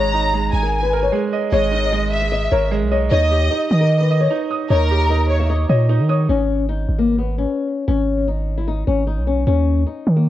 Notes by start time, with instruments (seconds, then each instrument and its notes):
Already playing: 808-style bass G#1, grand piano G#3, nylon-string guitar C#5, violin section A#5
0.14 grand piano D#4
0.33 grand piano G#3, nylon-string guitar D#5
0.53 808-style bass G#1, violin section G#5
0.63 nylon-string guitar A#4
0.83 nylon-string guitar B4
0.93 grand piano A#4
1.03 nylon-string guitar C#5
1.12 grand piano G#3
1.33 grand piano D#5
1.52 808-style bass G#1, grand piano G#3, nylon-string guitar C#5, violin section D#5
1.72 grand piano D#3
1.92 grand piano G#3, nylon-string guitar D#5
2.12 violin section E5
2.22 nylon-string guitar E5
2.32 nylon-string guitar D#5
2.51 808-style bass G#1, grand piano A#4, nylon-string guitar C#5
2.71 grand piano G#3, nylon-string guitar D#5
2.81 808-style bass B1
2.91 nylon-string guitar C#5, grand piano D#5
3.11 808-style bass D#2, grand piano D#4, nylon-string guitar C#5, violin section D#5
3.31 grand piano G4
3.51 grand piano D#4, nylon-string guitar D#5
3.71 808-style bass D#3, violin section D#5
3.81 nylon-string guitar A#4
4.00 nylon-string guitar B4
4.11 grand piano D#5
4.20 nylon-string guitar C#5
4.30 grand piano D#4
4.51 grand piano D#6
4.70 808-style bass D#2, grand piano D#4, violin section A#4, nylon-string guitar C#5
4.91 grand piano G4
5.10 grand piano D#4, nylon-string guitar D#5
5.30 violin section C#5
5.40 nylon-string guitar E5
5.50 nylon-string guitar D#5
5.69 808-style bass A#2, nylon-string guitar C#5, grand piano D#5
5.89 grand piano D#4, nylon-string guitar D#5
5.99 808-style bass D#3
6.09 nylon-string guitar C#5, grand piano D#6
6.29 808-style bass G#1, nylon-string guitar C#4
6.69 nylon-string guitar D#4
6.89 808-style bass G#1
6.99 nylon-string guitar A#3
7.18 nylon-string guitar B3
7.38 nylon-string guitar C#4
7.88 808-style bass G#1, nylon-string guitar C#4
8.28 nylon-string guitar D#4
8.58 nylon-string guitar E4
8.68 nylon-string guitar D#4
8.87 808-style bass G#1, nylon-string guitar C#4
9.07 nylon-string guitar D#4
9.17 808-style bass B1
9.27 nylon-string guitar C#4
9.47 808-style bass D#2, nylon-string guitar C#4
9.87 nylon-string guitar D#4
10.07 808-style bass D#3
10.16 nylon-string guitar A#3